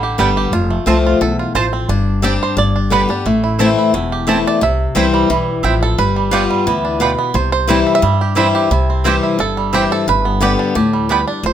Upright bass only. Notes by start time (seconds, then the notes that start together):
Already playing: A1
0.19 G1
0.52 F1
0.87 C2
1.21 B1
1.55 A1
1.89 G1
2.56 G1
3.25 A1
3.93 E1
4.62 C2
4.96 C2
5.30 B1
5.64 A1
5.98 G1
6.66 D2
7.34 C2
8.03 G2
8.71 C2
9.39 G1
10.07 G1
10.75 D2
11.43 F1